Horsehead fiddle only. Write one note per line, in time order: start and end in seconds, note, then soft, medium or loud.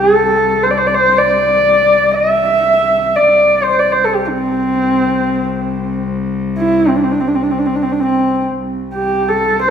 0.00 0.64 A4 medium
0.63 0.72 C5 medium
0.70 0.79 D5 medium
0.77 0.88 C5 medium
0.86 0.95 D5 medium
0.94 1.19 C5 medium
1.17 2.16 D5 medium
2.14 3.17 E5 medium
3.15 3.64 D5 medium
3.63 3.80 C5 medium
3.79 3.93 D5 medium
3.92 4.05 C5 medium
4.04 4.16 A4 medium
4.15 4.30 G4 medium
4.29 6.08 C4 medium
6.58 6.89 E4 medium
6.88 6.97 C4 medium
6.96 7.05 D4 medium
7.03 7.13 C4 medium
7.12 7.22 D4 medium
7.20 7.29 C4 medium
7.28 7.36 D4 medium
7.35 7.44 C4 medium
7.42 7.52 D4 medium
7.51 7.60 C4 medium
7.58 7.67 D4 medium
7.66 7.76 C4 medium
7.75 7.84 D4 medium
7.82 7.93 C4 medium
7.92 8.01 D4 medium
8.00 8.45 C4 medium
8.94 9.30 G4 medium
9.28 9.60 A4 medium
9.61 9.69 C5 medium